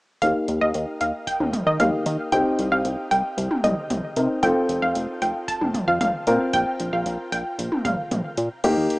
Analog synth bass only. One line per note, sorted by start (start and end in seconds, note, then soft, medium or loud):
0.22 0.33 D#2 loud
0.48 0.59 D#2 medium
0.61 0.73 D#2 medium
0.74 0.86 D#2 loud
1.01 1.12 D#2 loud
1.40 1.51 D#2 medium
1.67 1.78 D#3 medium
1.80 1.91 D#2 loud
2.06 2.17 D#3 loud
2.32 2.44 C2 loud
2.59 2.70 C2 medium
2.72 2.83 C2 loud
2.85 2.96 C2 loud
3.11 3.22 C2 medium
3.38 3.49 C2 loud
3.64 3.75 C2 medium
3.90 4.01 C2 loud
4.17 4.28 C3 medium
4.43 4.54 F1 loud
4.69 4.80 F1 medium
4.82 4.94 F1 loud
4.96 5.07 F1 loud
5.22 5.33 F1 medium
5.61 5.72 F1 loud
5.88 5.99 F2 medium
6.01 6.12 F1 loud
6.27 6.38 A#2 loud
6.53 6.65 A#1 loud
6.80 6.91 A#1 medium
6.93 7.04 A#1 loud
7.06 7.17 A#1 loud
7.32 7.44 A#1 loud
7.59 7.70 A#1 loud
7.85 7.96 A#1 loud
8.11 8.23 A#1 loud
8.38 8.49 A#2 medium
8.64 8.75 D#2 loud
8.77 8.88 D#2 medium